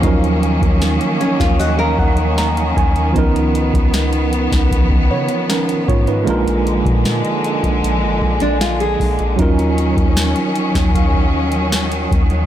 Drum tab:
HH |xxxxxxxxx--xxxxx|xxxxxxxxx--xxxxx|xxxxxxxxx--xxxox|xxxxxxxxx--xxxxx|
SD |----o--o----o---|----o--o----o---|----o-------o---|----o--o----o---|
BD |o--o---o--o---o-|o--o---ooo----o-|o--o---o--o---o-|o--o---ooo----o-|